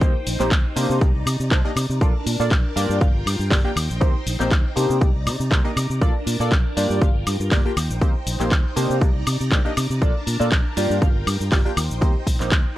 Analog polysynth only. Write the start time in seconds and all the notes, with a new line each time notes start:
0.01 A#3 C4 D#4 G4 C5
0.40 A#3 C4 D#4 G4 C5
0.76 A#3 D4 D#4 G4 C5
1.01 A#3 D4 D#4 G4 D5
1.51 A#3 D4 D#4 G4 C5
1.65 A#3 D4 D#4 G4 D#5
2.01 A#3 D4 F4 A4 D5
2.40 A#3 D4 F4 A4 D5
2.76 A#3 D4 F4 G4 D5
3.01 F4 G4 F5
3.50 A#3 D4 F4 G4 D5
3.64 A#3 D4 F4 G4 G5
4.00 A#3 C4 D#4 G4 C5
4.39 A#3 C4 D#4 G4 C5
4.76 A#3 D4 D#4 G4 C5
5.01 A#3 D4 D#4 G4 D5
5.51 A#3 D4 D#4 G4 C5
5.64 A#3 D4 D#4 G4 D#5
6.01 A#3 D4 F4 A4 D5
6.40 A#3 D4 F4 A4 D5
6.77 A#3 D4 F4 G4 D5
7.02 A#3 D4 F4 G4 F5
7.52 A#3 D4 F4 G4 D5
7.65 A#3 D4 F4 G4 G5
8.02 A#3 C4 D#4 G4 C5
8.40 A#3 C4 D#4 G4 C5
8.76 A#3 D4 D#4 G4 C5
9.01 A#3 D4 D#4 G4 D5
9.51 A#3 D4 D#4 G4 C5
9.65 A#3 D4 D#4 G4 D#5
10.01 A#3 D4 F4 A4 D5
10.40 A#3 D4 F4 A4 D5
10.77 A#3 D4 F4 G4 D5
11.02 A#3 D4 F4 G4 F5
11.51 A#3 D4 F4 G4 D5
11.65 A#3 D4 F4 G4 G5
12.01 A#3 C4 D#4 G4 C5
12.40 A#3 C4 D#4 G4 C5